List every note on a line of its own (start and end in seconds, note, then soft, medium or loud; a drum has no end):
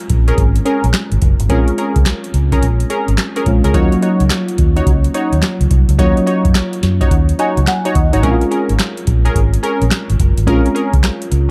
0.00 1.46 G#3 medium
0.00 1.46 C4 medium
0.00 1.47 C#4 medium
0.00 1.47 F4 medium
0.10 0.31 A#1 medium
0.10 kick loud
0.10 closed hi-hat medium
0.28 0.42 C#4 medium
0.28 0.42 G#4 medium
0.28 0.43 A#4 medium
0.28 closed hi-hat soft
0.38 0.58 G#1 loud
0.38 kick medium
0.38 closed hi-hat medium
0.56 closed hi-hat medium
0.65 0.86 C#4 medium
0.65 0.86 G#4 medium
0.65 0.87 A#4 medium
0.65 closed hi-hat medium
0.84 0.91 A#1 medium
0.84 closed hi-hat soft
0.94 snare loud
0.94 clap medium
0.94 closed hi-hat medium
1.12 1.19 G#1 medium
1.12 closed hi-hat soft
1.22 1.35 F#1 medium
1.22 kick medium
1.22 closed hi-hat medium
1.40 1.47 G#1 medium
1.40 closed hi-hat medium
1.49 1.63 A#1 loud
1.49 3.42 G#3 medium
1.49 3.42 C4 medium
1.49 1.70 C#4 medium
1.49 3.43 C#4 medium
1.49 3.43 F4 medium
1.49 1.71 G#4 medium
1.49 1.71 A#4 loud
1.49 kick loud
1.49 closed hi-hat medium
1.68 closed hi-hat soft
1.78 1.99 C#4 medium
1.78 1.99 G#4 medium
1.78 1.99 A#4 medium
1.78 closed hi-hat medium
1.96 2.03 C#2 loud
1.96 kick loud
1.96 closed hi-hat medium
2.06 snare loud
2.06 clap medium
2.06 closed hi-hat medium
2.24 closed hi-hat medium
2.34 2.55 C#2 medium
2.34 closed hi-hat medium
2.52 2.67 C#4 medium
2.52 2.67 G#4 medium
2.52 2.67 A#4 medium
2.52 kick loud
2.52 closed hi-hat soft
2.62 2.83 A#1 medium
2.62 closed hi-hat medium
2.80 closed hi-hat medium
2.90 3.11 C#4 medium
2.90 3.11 G#4 medium
2.90 3.11 A#4 medium
2.90 closed hi-hat medium
3.08 3.16 G#1 medium
3.08 closed hi-hat soft
3.18 snare loud
3.18 clap medium
3.18 closed hi-hat medium
3.36 3.51 C#4 medium
3.36 3.51 G#4 medium
3.36 3.51 A#4 medium
3.36 closed hi-hat soft
3.46 3.60 A#1 medium
3.46 3.74 G#3 medium
3.46 3.74 C4 soft
3.46 3.74 C#4 soft
3.46 3.75 F4 medium
3.46 kick medium
3.46 closed hi-hat medium
3.64 3.72 C#2 medium
3.64 3.79 C#4 medium
3.64 3.79 G#4 medium
3.64 3.79 A#4 medium
3.64 closed hi-hat medium
3.74 3.88 D#2 loud
3.74 5.94 F#3 medium
3.74 5.95 A#3 medium
3.74 5.95 C#4 medium
3.74 3.95 D#4 medium
3.74 5.96 F4 medium
3.74 3.95 F#4 medium
3.74 3.95 C#5 loud
3.74 kick loud
3.74 closed hi-hat medium
3.92 closed hi-hat soft
4.02 4.23 D#4 medium
4.02 4.23 F#4 medium
4.02 4.23 C#5 medium
4.02 closed hi-hat medium
4.20 4.28 C#2 medium
4.20 closed hi-hat medium
4.30 snare loud
4.30 clap loud
4.30 closed hi-hat medium
4.48 closed hi-hat medium
4.58 4.79 D#2 medium
4.58 kick medium
4.58 closed hi-hat medium
4.76 4.91 D#4 medium
4.76 4.91 F#4 medium
4.76 4.91 C#5 medium
4.76 closed hi-hat soft
4.86 5.07 C#2 medium
4.86 kick medium
4.86 closed hi-hat medium
5.04 closed hi-hat medium
5.14 5.35 D#4 medium
5.14 5.35 F#4 medium
5.14 5.35 C#5 medium
5.14 closed hi-hat medium
5.33 5.40 D#2 medium
5.33 closed hi-hat soft
5.42 snare medium
5.42 clap medium
5.42 closed hi-hat medium
5.61 5.68 C#2 medium
5.61 closed hi-hat soft
5.71 5.84 C2 loud
5.71 kick medium
5.71 closed hi-hat medium
5.89 5.96 C#2 loud
5.89 closed hi-hat medium
5.98 8.19 F#3 medium
5.98 8.19 A#3 medium
5.98 8.20 C#4 medium
5.98 6.19 D#4 loud
5.98 8.20 F4 medium
5.98 6.19 F#4 medium
5.98 6.19 C#5 loud
5.98 kick loud
5.98 closed hi-hat medium
6.17 closed hi-hat soft
6.26 6.47 D#4 medium
6.26 6.47 F#4 medium
6.26 6.47 C#5 medium
6.26 closed hi-hat medium
6.45 6.52 F#2 medium
6.45 kick loud
6.45 closed hi-hat medium
6.55 snare loud
6.55 clap loud
6.55 closed hi-hat medium
6.73 closed hi-hat medium
6.83 7.04 F#2 medium
6.83 snare medium
6.83 closed hi-hat medium
7.01 7.15 D#4 medium
7.01 7.15 F#4 medium
7.01 7.16 C#5 medium
7.01 kick loud
7.01 closed hi-hat soft
7.11 7.32 D#2 medium
7.11 kick medium
7.11 closed hi-hat medium
7.29 closed hi-hat medium
7.39 7.59 D#4 medium
7.39 7.60 F#4 medium
7.39 7.60 C#5 medium
7.39 7.65 G#5 medium
7.39 closed hi-hat medium
7.57 7.65 C#2 medium
7.57 closed hi-hat soft
7.67 7.94 F#5 medium
7.67 snare loud
7.67 clap medium
7.67 closed hi-hat medium
7.85 7.99 D#4 medium
7.85 8.00 F#4 medium
7.85 8.00 C#5 medium
7.85 closed hi-hat soft
7.95 8.09 D#2 medium
7.95 8.22 D#5 medium
7.95 kick medium
7.95 closed hi-hat medium
8.13 8.21 G#1 medium
8.13 8.27 D#4 medium
8.13 8.28 F#4 medium
8.13 8.28 C#5 medium
8.13 closed hi-hat medium
8.23 8.36 A#1 loud
8.23 10.43 G#3 medium
8.23 10.44 C4 medium
8.23 8.44 C#4 medium
8.23 10.44 C#4 medium
8.23 8.33 E4 medium
8.23 8.44 G#4 medium
8.23 8.44 A#4 loud
8.23 kick loud
8.23 closed hi-hat medium
8.32 10.48 F4 medium
8.41 closed hi-hat soft
8.51 8.72 C#4 medium
8.51 8.72 G#4 medium
8.51 8.72 A#4 medium
8.51 closed hi-hat medium
8.69 8.77 G#1 medium
8.69 closed hi-hat medium
8.79 snare loud
8.79 clap loud
8.79 closed hi-hat medium
8.97 closed hi-hat soft
9.07 9.28 A#1 medium
9.07 kick loud
9.07 closed hi-hat medium
9.25 9.40 C#4 medium
9.25 9.40 G#4 medium
9.25 9.40 A#4 medium
9.25 closed hi-hat soft
9.35 9.56 G#1 loud
9.35 kick medium
9.35 closed hi-hat medium
9.54 closed hi-hat medium
9.63 9.84 C#4 medium
9.63 9.84 G#4 medium
9.63 9.84 A#4 medium
9.63 closed hi-hat medium
9.82 9.89 A#1 medium
9.82 closed hi-hat soft
9.91 snare loud
9.91 clap medium
9.91 closed hi-hat medium
10.10 10.17 G#1 medium
10.10 closed hi-hat soft
10.20 10.33 F#1 medium
10.20 kick medium
10.20 closed hi-hat medium
10.38 10.45 G#1 medium
10.38 closed hi-hat medium
10.46 10.61 A#1 loud
10.46 11.51 G#3 medium
10.46 11.51 C4 medium
10.46 10.68 C#4 loud
10.46 11.51 C#4 medium
10.46 11.51 F4 medium
10.46 10.68 G#4 medium
10.46 10.68 A#4 loud
10.46 kick medium
10.46 closed hi-hat medium
10.66 closed hi-hat soft
10.75 10.96 C#4 medium
10.75 10.96 G#4 medium
10.75 10.96 A#4 medium
10.75 closed hi-hat medium
10.93 11.01 C#2 loud
10.93 kick loud
10.93 closed hi-hat soft
11.04 snare loud
11.04 clap loud
11.04 closed hi-hat medium
11.22 closed hi-hat medium
11.32 11.51 C#2 medium
11.32 closed hi-hat medium